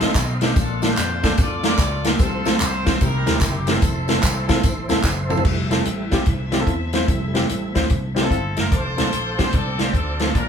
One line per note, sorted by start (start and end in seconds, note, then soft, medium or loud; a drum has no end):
0.00 0.13 A1 medium
0.00 2.97 A3 medium
0.00 0.53 C4 medium
0.00 0.10 C4 medium
0.00 0.53 D#4 medium
0.00 0.10 D#4 medium
0.00 0.10 F4 medium
0.00 0.12 A4 medium
0.00 0.11 A4 medium
0.00 0.56 D#5 medium
0.00 2.17 F5 medium
0.00 0.56 C6 medium
0.00 snare loud
0.00 closed hi-hat medium
0.00 tambourine soft
0.15 0.50 B1 loud
0.15 kick medium
0.15 clap loud
0.15 closed hi-hat medium
0.15 tambourine medium
0.41 0.51 C4 medium
0.41 0.51 D#4 medium
0.41 0.51 F4 medium
0.41 0.56 G4 medium
0.41 0.51 A4 medium
0.41 snare loud
0.41 closed hi-hat medium
0.41 tambourine soft
0.56 0.91 A#1 medium
0.56 1.19 A#2 medium
0.56 1.34 D4 medium
0.56 0.83 F4 medium
0.56 0.83 A4 loud
0.56 2.17 D5 medium
0.56 kick loud
0.56 closed hi-hat loud
0.56 tambourine medium
0.82 0.91 A#3 medium
0.82 0.92 D4 medium
0.82 0.92 F4 medium
0.82 1.38 F4 medium
0.82 0.92 A4 medium
0.82 1.39 A4 medium
0.82 1.39 C5 medium
0.82 snare loud
0.82 closed hi-hat medium
0.82 tambourine medium
0.97 1.32 F2 loud
0.97 clap medium
0.97 closed hi-hat medium
0.97 tambourine loud
1.23 1.32 A#3 medium
1.23 1.33 D4 medium
1.23 1.33 F4 medium
1.23 1.33 A4 medium
1.23 kick medium
1.23 snare loud
1.23 closed hi-hat medium
1.23 tambourine medium
1.37 1.73 F2 medium
1.37 1.65 F4 medium
1.37 1.65 A4 medium
1.37 1.65 D5 loud
1.37 kick loud
1.37 closed hi-hat medium
1.37 tambourine medium
1.64 1.73 A#3 medium
1.64 1.73 D4 medium
1.64 1.73 F4 medium
1.64 2.17 F4 medium
1.64 2.17 A4 medium
1.64 1.74 A#4 medium
1.64 2.03 D5 medium
1.64 snare loud
1.64 closed hi-hat medium
1.64 tambourine soft
1.78 2.13 C#2 loud
1.78 kick medium
1.78 clap medium
1.78 closed hi-hat medium
1.78 tambourine medium
2.04 2.14 A#3 medium
2.04 2.14 D4 medium
2.04 2.14 F4 medium
2.04 2.20 G4 medium
2.04 2.15 A#4 medium
2.04 snare loud
2.04 closed hi-hat medium
2.04 tambourine soft
2.19 2.54 C2 medium
2.19 2.83 C3 medium
2.19 2.98 C4 medium
2.19 2.60 F4 medium
2.19 2.60 A4 loud
2.19 3.00 C5 medium
2.19 3.00 F5 medium
2.19 5.42 C6 medium
2.19 kick loud
2.19 closed hi-hat medium
2.19 tambourine medium
2.45 2.55 A3 medium
2.45 2.55 C4 medium
2.45 2.55 F4 medium
2.45 2.55 A4 medium
2.45 snare loud
2.45 closed hi-hat medium
2.45 tambourine medium
2.60 2.95 C2 medium
2.60 2.99 F4 medium
2.60 2.99 A4 medium
2.60 3.02 C5 loud
2.60 clap loud
2.60 closed hi-hat medium
2.60 tambourine medium
2.85 2.95 A3 medium
2.85 2.95 C4 medium
2.85 2.96 F4 medium
2.85 2.96 C5 medium
2.85 kick medium
2.85 snare loud
2.85 closed hi-hat medium
2.85 tambourine medium
3.01 3.23 C2 loud
3.01 3.64 C3 medium
3.01 3.68 E4 medium
3.01 3.42 G4 medium
3.01 3.82 A#4 medium
3.01 3.40 A#4 medium
3.01 5.43 E5 medium
3.01 3.82 G5 medium
3.01 kick loud
3.01 closed hi-hat medium
3.01 tambourine medium
3.26 3.39 D2 medium
3.26 3.36 C4 medium
3.26 3.36 E4 medium
3.26 3.36 G4 medium
3.26 3.36 A#4 medium
3.26 snare loud
3.26 closed hi-hat medium
3.26 tambourine soft
3.41 3.76 F#1 medium
3.41 3.69 G4 medium
3.41 kick medium
3.41 clap medium
3.41 closed hi-hat medium
3.41 tambourine medium
3.67 3.77 C4 medium
3.67 5.01 C4 medium
3.67 3.77 E4 medium
3.67 5.01 E4 medium
3.67 3.77 G4 medium
3.67 5.05 A4 medium
3.67 3.77 A#4 medium
3.67 snare loud
3.67 closed hi-hat medium
3.67 tambourine soft
3.82 4.17 F1 loud
3.82 5.43 A4 medium
3.82 5.44 C5 medium
3.82 kick loud
3.82 closed hi-hat loud
3.82 tambourine medium
4.08 4.17 C4 medium
4.08 4.18 E4 medium
4.08 4.18 F4 medium
4.08 4.18 A4 medium
4.08 snare loud
4.08 closed hi-hat medium
4.08 tambourine medium
4.23 4.58 C2 medium
4.23 kick medium
4.23 clap medium
4.23 closed hi-hat medium
4.23 tambourine loud
4.48 4.58 C4 medium
4.48 4.58 E4 medium
4.48 4.58 F4 medium
4.48 4.58 A4 medium
4.48 kick medium
4.48 snare loud
4.48 closed hi-hat medium
4.48 tambourine medium
4.63 4.86 A1 medium
4.63 kick loud
4.63 closed hi-hat medium
4.63 tambourine medium
4.88 5.03 A#1 medium
4.88 4.98 C4 medium
4.88 4.99 E4 medium
4.88 4.99 F4 medium
4.88 4.99 A4 medium
4.88 snare loud
4.88 closed hi-hat medium
4.88 tambourine soft
5.04 5.39 F#1 loud
5.04 kick medium
5.04 snare medium
5.04 clap medium
5.04 tambourine medium
5.29 5.39 C4 medium
5.29 5.39 E4 medium
5.29 5.40 F4 medium
5.29 5.40 A4 loud
5.29 mid tom medium
5.29 tambourine soft
5.37 floor tom medium
5.45 5.80 F1 medium
5.45 6.09 G3 medium
5.45 6.09 A3 soft
5.45 6.09 E4 medium
5.45 8.69 E4 medium
5.45 8.69 A4 medium
5.45 8.69 C5 medium
5.45 8.69 E5 medium
5.45 kick loud
5.45 crash medium
5.71 5.80 C4 medium
5.71 5.80 E4 medium
5.71 5.81 F4 medium
5.71 5.81 A4 medium
5.71 snare loud
5.71 closed hi-hat medium
5.85 6.08 A1 medium
5.85 closed hi-hat medium
6.12 6.25 A#1 medium
6.12 6.21 C4 medium
6.12 6.21 E4 medium
6.12 6.21 F4 medium
6.12 6.22 G4 loud
6.12 kick medium
6.12 snare medium
6.12 closed hi-hat medium
6.26 6.62 C2 medium
6.26 kick loud
6.26 closed hi-hat medium
6.52 6.57 C4 medium
6.52 6.57 E4 medium
6.52 6.58 F4 medium
6.52 6.58 G4 medium
6.52 snare loud
6.52 closed hi-hat medium
6.59 6.71 C4 medium
6.59 6.71 E4 medium
6.59 6.71 F4 medium
6.59 6.71 A4 medium
6.67 7.02 E2 medium
6.67 kick medium
6.67 closed hi-hat medium
6.93 7.03 C4 medium
6.93 7.03 E4 medium
6.93 7.03 F4 medium
6.93 7.03 C5 medium
6.93 snare loud
6.93 closed hi-hat medium
7.08 7.43 F1 medium
7.08 7.72 G3 medium
7.08 7.72 A3 soft
7.08 7.72 E4 medium
7.08 kick loud
7.08 closed hi-hat medium
7.34 7.44 C4 medium
7.34 7.44 E4 medium
7.34 7.44 F4 medium
7.34 7.44 G4 medium
7.34 snare loud
7.34 closed hi-hat medium
7.49 7.72 A1 medium
7.49 closed hi-hat medium
7.74 7.88 D2 medium
7.74 7.84 C4 medium
7.74 7.84 E4 medium
7.74 7.85 F4 medium
7.74 7.85 C5 medium
7.74 kick medium
7.74 snare loud
7.74 closed hi-hat medium
7.90 8.25 C2 medium
7.90 kick medium
7.90 closed hi-hat medium
8.15 8.20 C4 medium
8.15 8.68 C4 medium
8.15 8.20 E4 medium
8.15 8.69 E4 medium
8.15 8.21 F4 medium
8.15 8.21 G4 medium
8.15 8.55 A4 loud
8.15 snare loud
8.15 closed hi-hat medium
8.23 8.34 C4 medium
8.23 8.34 E4 medium
8.23 8.34 F4 medium
8.23 8.35 A4 medium
8.30 8.53 G1 medium
8.30 8.56 F5 medium
8.30 kick medium
8.30 closed hi-hat medium
8.57 8.70 F#1 medium
8.57 8.71 A#4 medium
8.57 8.96 E5 medium
8.57 snare medium
8.57 closed hi-hat medium
8.72 8.94 F1 medium
8.72 9.50 A4 medium
8.72 10.33 C5 medium
8.72 9.39 C5 loud
8.72 10.49 F5 medium
8.72 10.49 A5 medium
8.72 10.49 D6 medium
8.72 kick loud
8.72 closed hi-hat medium
8.97 9.11 C2 medium
8.97 9.07 C4 medium
8.97 9.07 D4 medium
8.97 9.07 F4 medium
8.97 9.07 A4 medium
8.97 snare loud
8.97 closed hi-hat medium
9.12 9.47 A#1 medium
9.12 closed hi-hat medium
9.38 9.48 C4 medium
9.38 9.48 D4 medium
9.38 9.48 F4 medium
9.38 9.48 G4 medium
9.38 9.53 C5 loud
9.38 kick medium
9.38 snare medium
9.38 closed hi-hat medium
9.53 9.88 C2 medium
9.53 9.93 C4 medium
9.53 9.93 D4 medium
9.53 9.80 A4 loud
9.53 kick medium
9.53 closed hi-hat medium
9.79 9.89 C4 medium
9.79 9.89 D4 medium
9.79 9.89 F4 medium
9.79 9.94 G4 medium
9.79 9.89 C5 medium
9.79 snare loud
9.79 closed hi-hat medium
9.94 10.35 D2 medium
9.94 10.32 C4 medium
9.94 10.32 D4 medium
9.94 10.33 A4 medium
9.94 kick medium
9.94 closed hi-hat medium
10.19 10.30 C4 medium
10.19 10.30 D4 medium
10.19 10.30 F4 medium
10.19 10.30 A4 medium
10.19 snare loud
10.19 closed hi-hat medium
10.35 10.49 A#1 medium
10.35 10.49 A#2 medium
10.35 10.49 A#3 medium
10.35 10.49 D4 medium
10.35 10.49 F4 medium
10.35 10.49 A#4 medium
10.35 kick loud
10.35 closed hi-hat medium